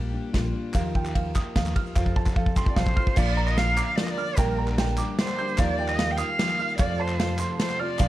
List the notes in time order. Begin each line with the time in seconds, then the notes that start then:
Already playing: A#1 A#2 G3 A#3 D4 G4
0.13 D4
0.33 A#1 G3 A#3 D4 F4 G4, kick, snare, ride
0.54 D4
0.73 D#2 D#3 F3 A#3 D#4 G4 A#4 F5, kick, clap, ride, shaker
0.95 G5, kick
1.05 clap, shaker
1.15 F3 A#3 D#4 G4 F5, kick, ride
1.35 A#3 D#4 G4 D#6, kick, clap, shaker
1.56 D#2 F3 A#3 D#4 G4 F5, kick, snare, ride
1.65 clap, shaker
1.76 F6, kick, ride
1.86 shaker
1.95 F1 F2 F3 C4 F4 A4 C5 F5, kick, clap, shaker
2.06 kick, shaker
2.16 A5, kick
2.26 kick, clap, shaker
2.36 F3 C4 F4 A4 F5, kick
2.46 kick
2.56 C4 F4 A4 G5 C6, kick, clap, shaker
2.66 D5 F5, kick, clap
2.75 B1 F3 C4 F4 A4 C5 F5, kick, snare
2.87 kick, clap
2.96 C4 F4 A4 F6, kick
3.07 kick, clap
3.15 A#1 A#2 D3 F3 A#3 D4 F4 A#4 D5 F5, kick, clap, crash, shaker
3.37 A#5
3.47 D#5, clap
3.57 F3 A#3 D4 A#4 F5, snare, ride
3.77 F3 A#3 D4 A#4 D6, clap, shaker
3.87 F5
3.96 F3 A#3 D4 A#4 D5, snare, ride
4.03 D#5
4.08 D5, clap
4.17 F3 A#3 D4 A#4 F6, clap, shaker
4.27 shaker
4.36 A#1 A#2 D3 G3 A#3 D4 G4 A#4 D5 G5, kick, clap, ride, shaker
4.58 A#5
4.68 clap
4.77 G3 A#3 D4 G4 G5, snare, ride
4.97 G3 A#3 D4 G4 D6, clap, shaker
5.18 G3 A#3 D4 G4 C5, snare, ride
5.28 clap
5.38 G3 A#3 D4 G4 G6, clap, shaker
5.48 shaker
5.57 D#2 D#3 F3 A#3 D#4 F4 G4 A#4 D5 F5, kick, clap, ride, shaker
5.79 G5
5.88 D#5, clap
5.99 F3 A#3 D#4 G4 F5, snare, ride
6.11 G5
6.17 D#4 G4 F5 D#6, clap, shaker
6.22 A#3
6.39 F3 A#3 D#4 G4, snare, ride
6.49 clap
6.58 A#3 D#4 G4 F6, clap, shaker
6.69 shaker
6.78 F1 F2 C3 F3 A3 C4 F4 A4 C5 D5 F5, kick, clap, ride, shaker
6.99 C5 A5, clap
7.08 clap, shaker
7.19 F3 C4 F4 A4 F5, snare, ride, shaker
7.28 clap
7.39 C6, clap, shaker
7.50 clap
7.59 F3 C4 F4 A4 C5, snare, ride
7.69 clap, shaker
7.79 C4 F4 A4 D5 F6
7.89 clap
7.99 A#1 A#2 D3 F3 A#3 D4 A#4 D5 F5, kick, clap, ride, shaker